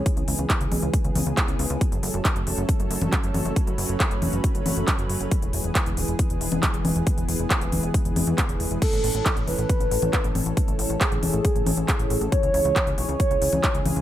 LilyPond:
<<
  \new Staff \with { instrumentName = "Soft synth lead" } { \time 4/4 \key fis \minor \tempo 4 = 137 r1 | r1 | r1 | r1 |
r1 | a'4. b'2 r8 | r4 gis'2. | cis''4. cis''2 r8 | }
  \new Staff \with { instrumentName = "Analog synth pad" } { \time 4/4 \key fis \minor <e gis b gis'>8 <e gis b gis'>8 <e gis b gis'>8 <e gis b gis'>8 <e gis b gis'>16 <e gis b gis'>8 <e gis b gis'>8 <e gis b gis'>8 <e gis b gis'>16 | <fis a cis' a'>8 <fis a cis' a'>8 <fis a cis' a'>8 <fis a cis' a'>8 <fis a cis' a'>16 <fis a cis' a'>8 <fis a cis' a'>8 <fis a cis' a'>8 <fis a cis' a'>16 | <fis a cis' b'>8 <fis a cis' b'>8 <fis a cis' b'>8 <fis a cis' b'>8 <fis a cis' b'>16 <fis a cis' b'>8 <fis a cis' b'>8 <fis a cis' b'>8 <fis a cis' b'>16 | <e gis b gis'>8 <e gis b gis'>8 <e gis b gis'>8 <e gis b gis'>8 <e gis b gis'>16 <e gis b gis'>8 <e gis b gis'>8 <e gis b gis'>8 <e gis b gis'>16 |
<e gis b gis'>8 <e gis b gis'>8 <e gis b gis'>8 <e gis b gis'>8 <e gis b gis'>16 <e gis b gis'>8 <e gis b gis'>8 <e gis b gis'>8 <e gis b gis'>16 | <e a cis' a'>8 <e a cis' a'>8 <e a cis' a'>8 <e a cis' a'>8 <e a cis' a'>16 <e a cis' a'>8 <e a cis' a'>8 <e a cis' a'>8 <e a cis' a'>16 | <e a cis' a'>8 <e a cis' a'>8 <e a cis' a'>8 <e a cis' a'>8 <e a cis' a'>16 <e a cis' a'>8 <e a cis' a'>8 <e a cis' a'>8 <e a cis' a'>16 | <e gis cis' gis'>8 <e gis cis' gis'>8 <e gis cis' gis'>8 <e gis cis' gis'>8 <e gis cis' gis'>16 <e gis cis' gis'>8 <e gis cis' gis'>8 <e gis cis' gis'>8 <e gis cis' gis'>16 | }
  \new Staff \with { instrumentName = "Analog synth bass" } { \clef bass \time 4/4 \key fis \minor r16 cis,16 cis,16 cis,16 r16 cis,16 b,,16 cis,16 r16 cis,16 cis,16 cis,16 r16 cis,16 cis,16 cis,16 | r16 fis,,16 fis,,16 fis,,16 r16 fis,,16 e,,16 fis,,16 r16 fis,,16 fis,,16 fis,,16 r16 fis,,16 fis,,16 fis,,16 | r16 fis,,16 fis,,16 fis,,16 r16 fis,,16 e,,16 fis,,16 r16 fis,,16 fis,,16 fis,,16 r16 fis,,16 fis,,16 fis,,16 | r16 e,,16 e,,16 e,,16 r16 e,,16 d,,16 e,,16 r16 e,,16 e,,16 e,,16 r16 e,,16 e,,16 e,,16 |
r16 e,,16 e,,16 e,,16 r16 e,,16 d,,16 e,,16 r16 e,,16 e,,16 e,16 r16 e,,16 e,,16 e,,16 | r16 a,,16 a,,16 a,,16 r16 a,,16 e,,16 a,,16 r16 a,,16 a,,16 a,,16 r16 a,,16 a,,16 a,,16 | r16 a,,16 a,,16 a,,16 r16 a,,16 e,,16 a,,16 r16 a,,16 a,,16 a,,16 r16 a,,16 a,,16 a,,16 | r16 cis,16 cis,16 cis,16 r16 cis,16 b,,16 cis,16 r16 cis,16 cis,16 cis,16 r16 cis,16 cis,16 cis,16 | }
  \new DrumStaff \with { instrumentName = "Drums" } \drummode { \time 4/4 <hh bd>16 hh16 hho16 hh16 <hc hh bd>16 hh16 <cgho hho>16 hh16 <hh bd>16 hh16 <cgho hho>16 hh16 <hc hh bd>16 hh16 hho16 hh16 | <hh bd>16 hh16 hho16 hh16 <hc hh bd>16 hh16 hho16 hh16 <hh bd>16 hh16 hho16 <cgho hh>16 <hc hh bd>16 hh16 <cgho hho>16 hh16 | <hh bd>16 hh16 hho16 hh16 <hc hh bd>16 hh16 <cgho hho>16 hh16 <hh bd>16 hh16 <cgho hho>16 hh16 <hc hh bd>16 hh16 hho16 hh16 | <hh bd>16 hh16 hho16 hh16 <hc hh bd>16 hh16 hho16 hh16 <hh bd>16 hh16 hho16 <cgho hh>16 <hc hh bd>16 hh16 <cgho hho>16 hh16 |
<hh bd>16 hh16 hho16 hh16 <hc hh bd>16 hh16 <cgho hho>16 hh16 <hh bd>16 hh16 <cgho hho>16 hh16 <hc hh bd>16 hh16 hho16 hh16 | <cymc hh bd>16 hh16 hho16 hh16 <hc hh bd>16 hh16 hho16 hh16 <hh bd>16 hh16 hho16 <cgho hh>16 <hc hh bd>16 hh16 <cgho hho>16 hh16 | <hh bd>16 hh16 hho16 hh16 <hc hh bd>16 hh16 <cgho hho>16 hh16 <hh bd>16 hh16 <cgho hho>16 hh16 <hc hh bd>16 hh16 hho16 hh16 | <hh bd>16 hh16 hho16 hh16 <hc hh bd>16 hh16 hho16 hh16 <hh bd>16 hh16 hho16 <cgho hh>16 <hc hh bd>16 hh16 <cgho hho>16 hh16 | }
>>